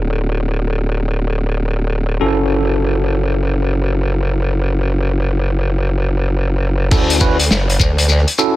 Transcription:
Already playing: D1 C#4 E4 F#4 A4
2.21 F#1 C#4 E4 F#4 A4
6.91 D2 C#4 E4 F#4 A4, kick, crash, shekere
7.10 closed hi-hat, shekere
7.20 C#4 E4 F#4 B4, kick, shekere
7.39 closed hi-hat, shekere
7.50 F#1, snare, shekere
7.70 closed hi-hat
7.80 D2, kick, shekere
7.98 cross-stick, closed hi-hat, shekere
8.04 cross-stick
8.09 cross-stick, shekere
8.18 cross-stick
8.28 closed hi-hat
8.38 C#4 E4 F#4 A4, shekere

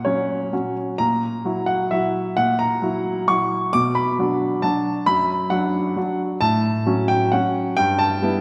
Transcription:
Already playing: A#2 F#5
0.05 F#3 C#4 F#4 C#5
0.53 F#3 C#4 F#4
0.98 A#2 A#5
1.45 F#3 E4 F#4
1.66 F#5
1.91 F#3 E4 F#4 E5
2.37 A#2 F#5
2.59 A#5
2.82 F#3 E4 F#4
3.28 F#3 E4 F#4 C#6
3.73 B2 D6
3.95 B5
4.19 F#3 D4 F#4
4.62 F#3 D4 F#4 A5
5.06 F#2 B5
5.50 F#3 D4 F#4 F#5
5.96 F#3 D4 F#4
6.41 A2 A5
6.86 F#3 C#4 F#4
7.08 G5
7.32 F#3 C#4 F#4 F#5
7.77 G2 G5
7.99 A5
8.22 G3 B3 E4

